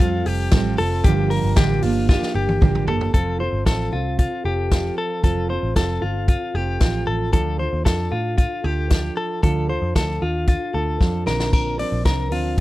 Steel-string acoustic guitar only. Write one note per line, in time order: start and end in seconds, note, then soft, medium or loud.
0.00 0.52 G3 medium
0.00 0.52 C4 medium
0.00 0.53 F4 medium
0.00 0.53 A4 medium
0.52 0.78 F3 medium
0.52 0.79 G3 medium
0.52 0.79 C4 loud
0.52 0.79 F4 medium
0.52 0.77 A4 medium
0.78 1.06 C4 soft
0.78 1.05 F4 medium
0.78 1.05 A4 medium
1.05 1.56 G2 medium
1.05 1.56 D3 medium
1.05 1.57 F3 medium
1.05 1.57 A#3 medium
1.05 1.57 D4 medium
1.05 1.58 G4 medium
1.57 1.83 G2 medium
1.57 1.83 D3 loud
1.57 1.83 F3 medium
1.57 1.83 A#3 loud
1.57 1.82 D4 medium
1.57 1.81 G4 medium
1.82 2.08 F3 soft
1.82 2.08 A#3 medium
1.82 2.09 D4 medium
1.82 2.09 G4 medium
2.09 2.61 F3 medium
2.09 2.61 A#3 medium
2.09 2.61 D4 medium
2.09 2.61 G4 medium
2.60 2.87 G2 medium
2.60 2.87 D3 medium
2.60 2.88 F3 medium
2.60 2.88 A#3 medium
2.60 2.87 D4 loud
2.60 2.86 G4 loud
2.87 3.13 F3 soft
2.87 3.14 A#3 soft
2.87 3.14 D4 medium
2.87 3.14 G4 medium
3.14 3.40 F3 medium
3.14 3.40 C4 medium
3.14 3.39 F4 medium
3.14 3.38 A4 medium
3.39 3.65 C4 soft
3.39 3.66 F4 soft
3.39 3.66 A4 medium
3.65 3.92 F3 medium
3.65 3.93 C4 medium
3.65 3.92 F4 medium
3.65 3.90 A4 medium
3.92 4.46 C4 soft
3.92 4.45 F4 soft
3.92 4.44 A4 medium
4.44 4.70 C4 soft
4.44 4.71 F4 soft
4.44 4.71 A4 soft
4.70 5.23 F3 medium
4.70 5.22 C4 medium
4.70 5.24 F4 medium
4.70 5.24 A4 medium
5.23 5.49 F3 medium
5.23 5.50 C4 medium
5.23 5.49 F4 medium
5.23 5.48 A4 medium
5.49 5.75 C4 soft
5.49 5.76 F4 medium
5.49 5.76 A4 medium
5.75 6.02 F3 medium
5.75 6.02 C4 medium
5.75 6.01 F4 medium
5.75 6.00 A4 medium
6.01 6.55 C4 soft
6.01 6.55 F4 soft
6.01 6.54 A4 soft
6.55 6.80 C4 soft
6.55 6.81 F4 soft
6.55 6.81 A4 soft
6.80 7.32 F3 medium
6.80 7.33 C4 medium
6.80 7.33 F4 medium
6.80 7.33 A4 medium
7.32 7.59 D3 medium
7.32 7.59 F3 medium
7.32 7.59 D4 medium
7.32 7.58 F4 medium
7.32 7.57 A4 medium
7.58 7.84 D4 soft
7.58 7.85 F4 soft
7.58 7.85 A4 soft
7.84 8.11 F3 medium
7.84 8.12 D4 medium
7.84 8.11 F4 medium
7.84 8.09 A4 medium
8.11 8.66 D4 soft
8.11 8.64 F4 soft
8.11 8.62 A4 soft
8.64 8.90 D4 soft
8.64 8.91 F4 medium
8.64 8.90 A4 medium
8.90 9.43 F3 medium
8.90 9.43 D4 medium
8.90 9.44 F4 medium
8.90 9.43 A4 medium
9.42 9.69 D3 medium
9.42 9.69 F3 medium
9.42 9.69 D4 medium
9.42 9.68 F4 medium
9.42 9.67 A4 medium
9.68 9.95 D4 soft
9.68 9.96 F4 medium
9.68 9.95 A4 soft
9.95 10.22 F3 medium
9.95 10.22 D4 medium
9.95 10.22 F4 medium
9.95 10.20 A4 medium
10.21 10.76 D4 soft
10.21 10.74 F4 soft
10.21 10.72 A4 soft
10.74 10.99 D4 soft
10.74 11.00 F4 soft
10.74 11.00 A4 medium
11.00 11.26 F3 medium
11.00 11.25 D4 medium
11.00 11.26 F4 medium
11.00 11.25 A4 medium
11.26 11.80 A#2 soft
11.26 11.80 D3 medium
11.26 11.80 F3 medium
11.26 11.79 C4 medium
11.26 11.78 D4 medium
11.26 11.78 A#4 medium
11.78 12.03 F3 soft
11.78 12.04 C4 medium
11.78 12.05 D4 soft
11.78 12.05 A#4 medium
12.04 12.31 F3 medium
12.04 12.31 C4 medium
12.04 12.30 D4 medium
12.04 12.29 A#4 medium
12.30 12.60 F3 soft
12.30 12.60 C4 soft
12.30 12.60 D4 soft
12.30 12.60 A#4 soft